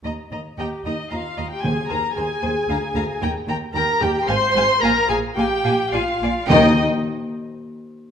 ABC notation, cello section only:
X:1
M:3/4
L:1/8
Q:1/4=111
K:Eb
V:1 name="Cello section" clef=bass
E,, E,, E,, E,, E,, E,, | E,, E,, E,, E,, D,, D,, | E,, E,, E,, E,, A,, A,, | B,, B,, B,, B,, B,, B,, |
E, z4 z |]